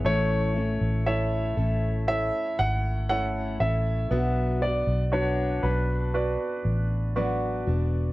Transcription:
X:1
M:4/4
L:1/16
Q:1/4=59
K:A
V:1 name="Grand piano"
c4 e4 e2 f2 f2 e2- | e2 d2 c2 B6 z4 |]
V:2 name="Grand piano"
A,4 [EAc]4 [EAc]4 [EAc]4 | B,4 [DFB]4 [FBd]4 [FBd]4 |]
V:3 name="Steel-string acoustic guitar"
[A,,E,A,CEA]2 [A,CEA]2 [A,CEA]2 [A,CEA]6 [A,CEA]2 [A,CEA]2 | [B,,F,B,DF]2 [B,DF]2 [F,B,DF]2 [B,DF]6 [F,B,DF]2 [B,DF]2 |]
V:4 name="Fingered electric bass" clef=bass
A,,,3 A,,,3 A,,,3 z G,,,4 A,,,2 | B,,,3 B,,,3 B,,,3 z A,,,4 E,,,2 |]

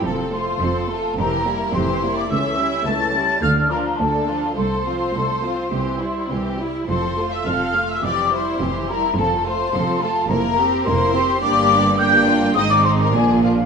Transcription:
X:1
M:4/4
L:1/16
Q:1/4=106
K:F
V:1 name="Flute section"
a2 c'4 a2 b4 c'3 d' | e'4 a'4 f'2 b2 a4 | c'12 z4 | c'3 e' f'3 e' d'2 c'4 b2 |
a2 c'4 a2 b4 c'4 | [K:Gphr] d'4 g'4 e' d' c' b a2 f2 |]
V:2 name="Violin section"
A2 c4 A2 B4 c3 d | e4 a4 f2 B2 A4 | c12 z4 | c3 e f3 e d2 c4 B2 |
A2 c4 A2 B4 c4 | [K:Gphr] d4 g4 e d c B A2 F2 |]
V:3 name="Violin section"
A2 F2 A2 F2 G2 E2 G2 E2 | ^C2 E2 C2 E2 D2 F2 D2 F2 | A2 F2 A2 F2 G2 E2 G2 E2 | A2 F2 A2 F2 G2 E2 G2 E2 |
A2 F2 A2 F2 B2 G2 B2 G2 | [K:Gphr] G4 G2 F2 E4 D4 |]
V:4 name="Viola section"
[F,C]2 A,2 [F,C]2 A,2 [E,C]2 [G,B,]2 [E,C]2 [G,B,]2 | [E,A,]2 [G,^C]2 [E,A,]2 [G,C]2 [D,A,]2 [F,D]2 [D,A,]2 [F,D]2 | A,2 [F,C]2 A,2 [F,C]2 [E,C]2 [G,E]2 [E,C]2 [G,E]2 | [F,C]2 A,2 [F,C]2 A,2 [E,C]2 [G,E]2 [E,C]2 [G,E]2 |
[F,C]2 A,2 [F,C]2 A,2 [B,E]2 [CG]2 [B,E]2 [CG]2 | [K:Gphr] [B,D]4 [B,D]4 [A,C]4 [F,B,]4 |]
V:5 name="Cello section" clef=bass
F,,4 F,,4 F,,4 F,,4 | ^C,,4 C,,4 D,,4 D,,4 | C,,4 C,,4 C,,4 C,,4 | F,,4 F,,4 F,,4 F,,4 |
F,,4 F,,4 F,,4 F,,4 | [K:Gphr] G,,8 A,,4 B,,4 |]
V:6 name="Double bass section" clef=bass
F,,,4 F,,,4 F,,,4 F,,,4 | ^C,,4 C,,4 D,,4 D,,4 | C,,4 C,,4 C,,4 C,,4 | F,,,4 F,,,4 F,,,4 F,,,4 |
F,,,4 F,,,4 F,,,4 F,,,4 | [K:Gphr] G,,,8 A,,,4 B,,,4 |]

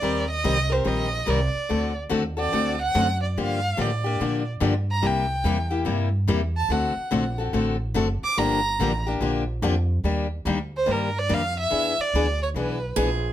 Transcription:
X:1
M:4/4
L:1/8
Q:"Swing" 1/4=144
K:Gm
V:1 name="Violin"
d e2 c e2 d2- | d z2 d2 ^f2 d | f2 d3 z2 b | g3 z4 a |
^f3 z4 d' | b3 z4 z | z3 c B d f =e- | =e d2 ^c =B2 z2 |]
V:2 name="Steel-string acoustic guitar"
z8 | z8 | z8 | z8 |
z8 | z8 | z8 | z6 ^G2 |]
V:3 name="Steel-string acoustic guitar"
[E,G,CGB] z [E,G,CGB] [CGB] [E,G,CGB] z [E,G,CGB] z | [D,A,C^FA] z [D,A,CFA] [CFA] [D,A,CFA] z [D,A,CFA] z | [D,F,B,DG] z [D,F,B,DG] [B,DG] [D,F,B,DG] z [D,F,B,DG] z | [C,G,B,=EG] z [C,G,B,EG] [B,EG] [C,G,B,EG] z [C,G,B,EG] z |
[D,A,C^FA] z [D,A,CFA] [CFA] [D,A,CFA] z [D,A,CFA] z | [D,F,B,DG] z [D,F,B,DG] [B,DG] [D,F,B,DG] z [D,F,B,DG] z | [E,G,B,DG] z [E,G,B,DG] z [E,G,B,DG] z [E,G,B,DG] z | [=E,=B,D^G] z [E,B,DG] z [E,B,DG] z [E,B,DG] z |]
V:4 name="Upright bass" clef=bass
E,,2 C,,2 B,,,2 C,, z | D,,2 E,,2 D,,2 ^F,,2 | G,,2 A,,2 B,,2 G,,2 | C,,2 =E,,2 G,,2 E,,2 |
D,, z B,,,2 A,,,2 ^F,,, z | G,,,2 A,,,2 B,,,2 F,,2 | E,,2 D,,2 G,,2 F,,2 | =E,, z D,,2 =B,,,2 _B,,,2 |]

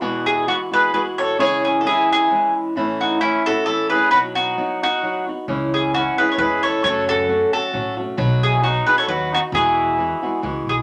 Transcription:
X:1
M:3/4
L:1/16
Q:"Swing" 1/4=132
K:E
V:1 name="Mandolin"
z2 G2 F2 B2 B2 c2 | c2 G3/2 A/2 G2 G4 z2 | z2 F2 E2 A2 A2 B2 | B2 F4 F4 z2 |
z2 G2 F2 B3/2 c/2 B2 c2 | c2 A4 A4 z2 | z2 G2 F2 B c B2 F2 | G8 z2 G2 |]
V:2 name="Trumpet"
z2 E2 B,2 G2 G2 A2 | G2 E3/2 F/2 E2 E4 z2 | z2 D2 C2 F2 E2 G2 | F2 D4 D4 z2 |
z2 E2 C2 G3/2 A/2 G2 A2 | A2 F4 F4 z2 | z2 E2 D2 G A F2 D2 | E8 z4 |]
V:3 name="Nylon-string guitar"
[E,,B,,E,G,B,F]4 [E,G,B,F]2 [E,G,B,F]2 [E,G,B,F]4 | [C,E,G,CE]4 [E,G,CE]4 [E,G,CE]4 | [A,,E,A,CE]4 [E,A,CE]2 [A,CE]2 [E,A,CE]2 [A,CE]2 | [B,,F,B,DF]4 [F,B,DF]2 [B,DF]2 [F,B,DF]2 [B,DF]2 |
[C,E,G,CE]4 [E,G,CE]2 [G,CE]2 [E,G,CE]4 | [F,,C,F,A,CF]4 [F,A,CF]4 [F,A,CF]2 [F,A,CF]2 | [B,,F,B,DF]4 [F,B,DF]2 [B,DF]2 [F,B,DF]2 [B,DF]2 | [E,,B,,E,G,B,F]4 [E,G,B,F]2 [E,G,B,F]2 [E,G,B,F]4 |]
V:4 name="Upright bass" clef=bass
z12 | z12 | z12 | z12 |
C,,8 E,,4 | F,,8 A,,4 | B,,,8 D,,4 | E,,8 C,,2 B,,,2 |]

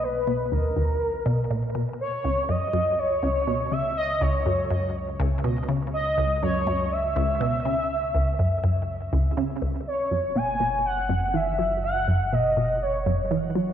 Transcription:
X:1
M:4/4
L:1/8
Q:1/4=122
K:C#dor
V:1 name="Analog synth lead"
B2 A4- A z | c2 d2 c3 e | d c3 z4 | d2 c2 e4- |
e6 z2 | c2 g2 f2 e2 | f2 d2 c3 z |]
V:2 name="Synth arpeggio sound" clef=bass
z B,, D,, D,, z B,, A,, B,, | z C,, F,, F,, z C,, B,, C, | z C,, F,, F,, z C,, B,, C, | z C,, F,, F,, z C,, B,, C, |
z C,, F,, F,, z C,, C, C,, | z F,, B,, B,, z F,, E, F, | z F,, B,, B,, z F,, E, F, |]
V:3 name="Analog synth bass" clef=bass
B,,,8 | C,,8- | C,,8- | C,,8- |
C,,8 | F,,,8- | F,,,8 |]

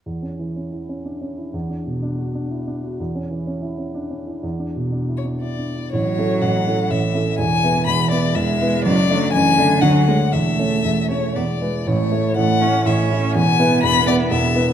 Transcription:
X:1
M:3/4
L:1/8
Q:1/4=123
K:A
V:1 name="Violin"
z6 | z6 | z6 | z3 c d2 |
c2 f2 e2 | g2 b d e2 | d2 g2 f2 | e3 c d2 |
c2 f2 e2 | g2 b d e2 |]
V:2 name="Grand piano"
(3E,, C E, (3C E C (3D C E | (3E,, D B,, (3D F D (3E D F | (3E,, C E, (3C E C (3D C E | (3E,, D B,, (3D E D (3E D E |
[A,,,A,,] [CEA] [A,,,A,,] [CEA] [A,,,A,,] [CEA] | [E,,,E,,] [B,EB] [E,,,E,,] [B,EB] [E,,,E,,] [B,EB] | [F,,,F,,] [A,Dd] [F,,,F,,] [A,Dd] [D,,D,] [A,Dc] | [E,,,E,,] [A,Cc] [E,,,E,,] [A,Cc] [E,,,E,,] [G,EB] |
[A,,,A,,] [A,Ec] [A,,,A,,] [A,Ec] [A,,,A,,] [A,Ec] | [E,,,E,,] [B,EB] [E,,,E,,] [B,EB] [E,,,E,,] [B,EB] |]
V:3 name="Cello" clef=bass
z6 | z6 | z6 | z6 |
F,4 E,2 | E,4 G,2 | F, F, E, D, F, G, | A,4 B, z |
A,2 A, C C2 | B,6 |]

